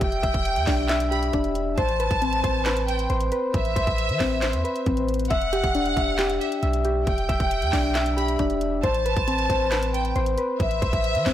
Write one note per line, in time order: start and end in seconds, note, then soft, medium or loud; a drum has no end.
0.00 0.22 E1 loud
0.00 1.10 G4 medium
0.00 0.22 E5 medium
0.00 1.07 G5 loud
0.00 kick loud
0.00 closed hi-hat medium
0.00 downlifter medium
0.12 closed hi-hat medium
0.23 0.34 E1 loud
0.23 0.88 E5 loud
0.23 kick loud
0.23 closed hi-hat medium
0.34 0.58 E1 loud
0.34 kick loud
0.34 closed hi-hat medium
0.45 closed hi-hat medium
0.56 0.67 E2 loud
0.56 closed hi-hat medium
0.67 1.31 B1 loud
0.67 1.32 D4 medium
0.67 kick loud
0.67 snare medium
0.67 clap medium
0.67 open hi-hat medium
0.89 1.78 E5 loud
0.89 snare loud
0.89 clap medium
0.89 closed hi-hat medium
1.00 closed hi-hat medium
1.11 1.78 G4 medium
1.11 1.33 B5 medium
1.11 closed hi-hat medium
1.23 closed hi-hat medium
1.33 1.76 E1 loud
1.33 1.78 D4 medium
1.33 kick loud
1.33 closed hi-hat medium
1.44 closed hi-hat medium
1.55 closed hi-hat medium
1.77 2.09 A1 loud
1.77 2.43 C5 loud
1.77 2.84 A5 loud
1.77 kick loud
1.77 closed hi-hat medium
1.89 closed hi-hat medium
2.00 2.65 B4 medium
2.00 closed hi-hat medium
2.11 2.42 A1 loud
2.11 kick loud
2.11 closed hi-hat medium
2.22 3.54 C4 medium
2.22 closed hi-hat medium
2.33 closed hi-hat medium
2.44 3.07 A1 loud
2.44 3.09 C5 medium
2.44 kick loud
2.44 closed hi-hat medium
2.66 3.31 B4 loud
2.66 snare loud
2.66 clap medium
2.66 closed hi-hat medium
2.77 closed hi-hat medium
2.88 3.09 G5 medium
2.88 closed hi-hat medium
2.99 closed hi-hat medium
3.10 3.31 A1 loud
3.10 3.75 C5 loud
3.10 closed hi-hat medium
3.21 closed hi-hat medium
3.32 4.63 B4 medium
3.32 closed hi-hat medium
3.54 3.75 A1 loud
3.54 4.83 E5 loud
3.54 kick loud
3.54 closed hi-hat medium
3.65 closed hi-hat medium
3.76 3.87 A1 loud
3.76 4.41 C5 loud
3.76 kick loud
3.76 closed hi-hat medium
3.87 4.11 A1 loud
3.87 kick loud
3.87 closed hi-hat medium
3.98 closed hi-hat medium
4.09 4.20 E3 loud
4.09 closed hi-hat medium
4.20 4.55 A1 loud
4.20 4.85 C4 medium
4.20 kick loud
4.20 snare medium
4.20 clap medium
4.20 open hi-hat medium
4.42 5.31 C5 loud
4.42 snare loud
4.42 clap medium
4.42 closed hi-hat medium
4.53 4.64 E2 loud
4.53 closed hi-hat medium
4.64 5.31 B4 medium
4.64 closed hi-hat medium
4.76 closed hi-hat medium
4.86 5.29 A1 loud
4.86 5.30 C4 medium
4.86 kick loud
4.86 closed hi-hat medium
4.97 closed hi-hat medium
5.09 closed hi-hat medium
5.14 closed hi-hat medium
5.20 closed hi-hat medium
5.25 closed hi-hat medium
5.30 5.62 E1 loud
5.30 5.95 E5 loud
5.30 6.37 F#5 loud
5.30 kick loud
5.30 closed hi-hat medium
5.41 closed hi-hat medium
5.53 6.17 G4 medium
5.53 closed hi-hat medium
5.64 5.95 E1 loud
5.64 kick loud
5.64 closed hi-hat medium
5.75 7.07 D4 medium
5.75 closed hi-hat medium
5.86 closed hi-hat medium
5.97 6.39 E1 loud
5.97 6.61 E5 medium
5.97 kick loud
5.97 closed hi-hat medium
6.19 6.84 G4 loud
6.19 snare loud
6.19 clap medium
6.19 closed hi-hat medium
6.30 closed hi-hat medium
6.40 6.61 E5 medium
6.40 closed hi-hat medium
6.52 closed hi-hat medium
6.63 7.05 B1 loud
6.63 7.27 E5 medium
6.63 closed hi-hat medium
6.73 closed hi-hat medium
6.85 8.16 G4 medium
6.85 closed hi-hat medium
7.07 7.28 E1 loud
7.07 8.13 G5 loud
7.07 kick loud
7.07 closed hi-hat medium
7.18 closed hi-hat medium
7.29 7.39 E1 loud
7.29 7.94 E5 loud
7.29 kick loud
7.29 closed hi-hat medium
7.40 7.64 E1 loud
7.40 kick loud
7.40 closed hi-hat medium
7.51 closed hi-hat medium
7.62 7.73 E2 loud
7.62 closed hi-hat medium
7.73 8.37 B1 loud
7.73 8.38 D4 medium
7.73 kick medium
7.73 snare loud
7.73 clap medium
7.73 open hi-hat medium
7.95 8.84 E5 loud
7.95 snare loud
7.95 clap medium
7.95 closed hi-hat medium
8.06 closed hi-hat medium
8.17 8.83 G4 medium
8.17 8.38 B5 medium
8.17 closed hi-hat medium
8.28 closed hi-hat medium
8.39 8.82 E1 loud
8.39 8.84 D4 medium
8.39 kick loud
8.39 closed hi-hat medium
8.50 closed hi-hat medium
8.61 closed hi-hat medium
8.83 9.15 A1 loud
8.83 9.49 C5 loud
8.83 9.90 A5 loud
8.83 kick loud
8.83 closed hi-hat medium
8.94 closed hi-hat medium
9.06 9.70 B4 medium
9.06 closed hi-hat medium
9.17 9.48 A1 loud
9.17 kick loud
9.17 closed hi-hat medium
9.28 10.60 C4 medium
9.28 closed hi-hat medium
9.39 closed hi-hat medium
9.50 10.13 A1 loud
9.50 10.15 C5 medium
9.50 kick loud
9.50 closed hi-hat medium
9.72 10.37 B4 medium
9.72 snare loud
9.72 clap medium
9.72 closed hi-hat medium
9.83 closed hi-hat medium
9.94 10.15 G5 medium
9.94 closed hi-hat medium
10.05 closed hi-hat medium
10.16 10.37 A1 loud
10.16 10.81 C5 loud
10.16 closed hi-hat medium
10.26 closed hi-hat medium
10.38 11.33 B4 medium
10.38 closed hi-hat medium
10.60 10.81 A1 loud
10.60 11.33 E5 loud
10.60 kick loud
10.60 closed hi-hat medium
10.71 closed hi-hat medium
10.82 10.92 A1 loud
10.82 11.33 C5 medium
10.82 kick loud
10.82 closed hi-hat medium
10.93 11.17 A1 loud
10.93 kick loud
10.93 closed hi-hat medium
11.04 closed hi-hat medium
11.15 11.26 E3 loud
11.15 closed hi-hat medium
11.26 11.33 A1 loud
11.26 11.33 C4 medium
11.26 kick medium
11.26 snare medium
11.26 clap medium
11.26 open hi-hat medium